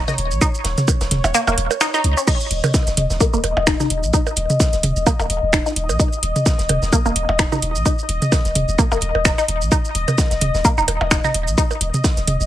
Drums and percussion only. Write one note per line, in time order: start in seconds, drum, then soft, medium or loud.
0.08 snare medium
0.08 mid tom medium
0.08 percussion blips medium
0.08 shaker soft
0.18 closed hi-hat medium
0.31 shaker soft
0.41 kick loud
0.41 closed hi-hat medium
0.41 shaker medium
0.54 shaker soft
0.64 snare loud
0.64 closed hi-hat medium
0.77 snare soft
0.77 closed hi-hat soft
0.77 mid tom medium
0.77 shaker soft
0.88 kick loud
0.88 closed hi-hat medium
0.88 percussion blips medium
0.88 shaker medium
1.01 snare medium
1.01 closed hi-hat medium
1.01 closed hi-hat soft
1.01 shaker soft
1.11 snare soft
1.11 closed hi-hat medium
1.11 mid tom medium
1.24 closed hi-hat medium
1.24 percussion blips medium
1.24 shaker soft
1.34 closed hi-hat loud
1.34 shaker medium
1.47 percussion blips medium
1.47 shaker soft
1.58 closed hi-hat medium
1.71 percussion blips medium
1.71 shaker soft
1.81 finger snap loud
1.81 snare loud
1.81 closed hi-hat medium
1.81 shaker medium
1.94 snare soft
1.94 shaker soft
2.04 closed hi-hat medium
2.17 shaker soft
2.27 kick loud
2.27 closed hi-hat medium
2.27 crash medium
2.27 shaker medium
2.40 shaker soft
2.51 closed hi-hat medium
2.64 closed hi-hat soft
2.64 mid tom medium
2.64 percussion blips medium
2.64 shaker soft
2.74 kick loud
2.74 snare loud
2.74 closed hi-hat medium
2.74 shaker medium
2.87 snare medium
2.87 closed hi-hat soft
2.87 shaker soft
2.97 closed hi-hat loud
2.97 closed hi-hat medium
2.97 mid tom medium
3.10 snare medium
3.10 shaker soft
3.20 kick loud
3.20 closed hi-hat medium
3.20 shaker medium
3.33 shaker soft
3.44 closed hi-hat medium
3.44 percussion blips medium
3.57 percussion blips medium
3.67 finger snap loud
3.67 kick loud
3.67 snare loud
3.67 closed hi-hat medium
3.67 shaker medium
3.80 snare medium
3.80 mid tom medium
3.80 shaker soft
3.90 closed hi-hat medium
4.03 shaker soft
4.13 kick loud
4.13 closed hi-hat medium
4.13 shaker medium
4.27 percussion blips medium
4.27 shaker soft
4.36 closed hi-hat medium
4.50 closed hi-hat soft
4.50 mid tom medium
4.50 shaker soft
4.60 kick loud
4.60 snare loud
4.60 closed hi-hat medium
4.60 shaker medium
4.73 snare soft
4.73 closed hi-hat soft
4.73 shaker soft
4.83 closed hi-hat loud
4.83 closed hi-hat medium
4.83 mid tom medium
4.96 shaker soft
5.06 kick loud
5.06 closed hi-hat medium
5.06 percussion blips medium
5.06 shaker medium
5.20 percussion blips medium
5.20 shaker soft
5.30 closed hi-hat medium
5.53 finger snap loud
5.53 kick loud
5.53 snare loud
5.53 closed hi-hat medium
5.53 shaker medium
5.66 snare medium
5.66 shaker soft
5.76 closed hi-hat medium
5.89 percussion blips medium
5.89 shaker soft
6.00 kick loud
6.00 closed hi-hat loud
6.00 shaker medium
6.13 shaker soft
6.23 closed hi-hat medium
6.36 closed hi-hat soft
6.36 mid tom medium
6.36 shaker soft
6.45 kick loud
6.45 snare loud
6.45 closed hi-hat medium
6.45 shaker medium
6.58 snare medium
6.58 closed hi-hat soft
6.58 shaker soft
6.69 closed hi-hat medium
6.69 closed hi-hat loud
6.69 mid tom medium
6.69 percussion blips medium
6.82 snare medium
6.82 shaker soft
6.93 kick loud
6.93 closed hi-hat medium
6.93 shaker medium
7.06 shaker soft
7.16 closed hi-hat medium
7.29 percussion blips medium
7.39 finger snap loud
7.39 kick loud
7.39 snare loud
7.39 closed hi-hat medium
7.39 shaker medium
7.52 snare medium
7.52 mid tom medium
7.52 percussion blips medium
7.52 shaker soft
7.62 closed hi-hat medium
7.75 shaker soft
7.86 kick loud
7.86 closed hi-hat medium
7.86 shaker medium
7.99 shaker soft
8.09 closed hi-hat medium
8.22 closed hi-hat soft
8.22 mid tom medium
8.22 shaker soft
8.32 kick loud
8.32 snare loud
8.32 closed hi-hat medium
8.32 percussion blips medium
8.32 shaker medium
8.45 snare soft
8.45 closed hi-hat soft
8.45 shaker soft
8.55 closed hi-hat medium
8.55 mid tom medium
8.68 shaker soft
8.78 kick loud
8.78 closed hi-hat medium
8.78 shaker medium
8.92 percussion blips medium
8.92 shaker soft
9.01 closed hi-hat medium
9.15 percussion blips medium
9.25 finger snap loud
9.25 kick loud
9.25 snare loud
9.25 closed hi-hat medium
9.25 shaker medium
9.38 snare soft
9.38 shaker soft
9.48 closed hi-hat medium
9.61 shaker soft
9.71 kick loud
9.71 closed hi-hat medium
9.71 shaker medium
9.85 shaker soft
9.95 closed hi-hat medium
10.08 closed hi-hat soft
10.08 mid tom medium
10.08 percussion blips medium
10.08 shaker soft
10.18 kick loud
10.18 snare loud
10.18 closed hi-hat medium
10.18 shaker medium
10.30 snare medium
10.30 closed hi-hat soft
10.30 shaker soft
10.41 closed hi-hat medium
10.41 mid tom medium
10.54 snare medium
10.54 shaker soft
10.64 kick loud
10.64 closed hi-hat medium
10.64 shaker medium
10.78 shaker soft
10.88 closed hi-hat medium
10.88 percussion blips medium
11.01 percussion blips medium
11.11 finger snap loud
11.11 kick loud
11.11 snare loud
11.11 closed hi-hat medium
11.11 shaker medium
11.24 snare medium
11.24 mid tom medium
11.24 shaker soft
11.34 closed hi-hat medium
11.47 shaker soft
11.58 kick loud
11.58 closed hi-hat medium
11.58 shaker medium
11.71 percussion blips medium
11.71 shaker soft
11.81 closed hi-hat medium
11.94 closed hi-hat soft
11.94 mid tom medium
11.94 shaker soft
12.04 kick loud
12.04 snare loud
12.04 closed hi-hat medium
12.04 shaker medium
12.17 snare soft
12.17 closed hi-hat soft
12.17 shaker soft
12.27 closed hi-hat medium
12.27 mid tom medium
12.41 shaker soft